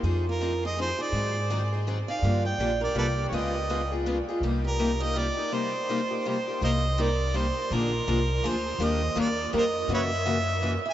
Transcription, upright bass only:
X:1
M:3/4
L:1/8
Q:"Swing" 1/4=164
K:Cm
V:1 name="Upright bass" clef=bass
F,,6 | A,,6 | G,,2 B,,,2 C,,2 | _D,,6 |
C,,6 | z6 | C,,6 | B,,,2 C,,2 D,,2 |
E,,2 E,,2 F,,2 | ^F,,6 |]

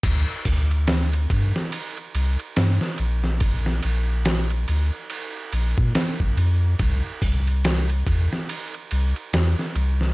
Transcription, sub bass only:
X:1
M:4/4
L:1/16
Q:"Swing 16ths" 1/4=71
K:Bblyd
V:1 name="Sub bass" clef=bass
D,, z D,,4 G,, z3 C,, z G,, z B,,,2- | B,,,2 B,,,4 D,, z3 B,,, B,, z B,,, F,,2 | C,, z C,,4 E,, z3 C,, z E,, z C,,2 |]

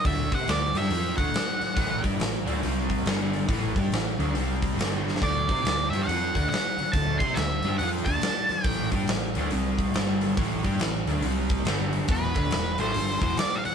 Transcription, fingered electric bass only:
X:1
M:4/4
L:1/8
Q:"Swing" 1/4=140
K:D
V:1 name="Fingered electric bass" clef=bass
D,, =C, D,, G,, =F,, D,, z2 | A,,, G,, A,,, D,, =C,,2 G,,,2 | A,,, G,, A,,, D,, =C,,2 G,,,2 | D,, =C, D,, G,, =F,, D,, z2 |
D,, =C, D,, G,, =F,, D,, z2 | A,,, G,, A,,, D,, =C,,2 G,,,2 | A,,, G,, A,,, D,, =C,,2 G,,,2 | E,,, D,, E,,, A,,, G,,, E,,, z2 |]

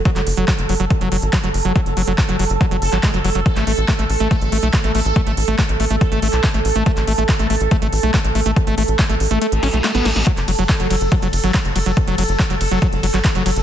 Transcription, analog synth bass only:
X:1
M:4/4
L:1/16
Q:1/4=141
K:F#m
V:1 name="Analog synth bass" clef=bass
z F,,, F,,, F,,, z F,,, F,,, F,,, z F,,, F,,, G,,, z F,,, F,,, F,,, | z F,,, F,,, F,,, z F,,, F,,, F,,, z F,,, F,,, G,,, z F,,, F,,, F,,, | z A,,, A,,, A,,, z A,,, A,,, A,,, z A,,, A,,, B,,, z A,,, A,,, A,,, | z A,,, A,,, A,,, z A,,, A,,, A,,, z A,,, A,,, B,,, z A,,, A,,, A,,, |
z A,,, A,,, A,,, z A,,, A,,, A,,, z A,,, A,,, B,,, z A,,, A,,, A,,, | z A,,, A,,, A,,, z A,,, A,,, A,,, z A,,, A,,, B,,, z A,,, A,,, A,,, | z F,,, F,,, F,,, z F,,, F,,, F,,, z F,,, F,,, G,,, z F,,, F,,, F,,, | z F,,, F,,, F,,, z F,,, F,,, F,,, z F,,, F,,, G,,, z F,,, F,,, F,,, |]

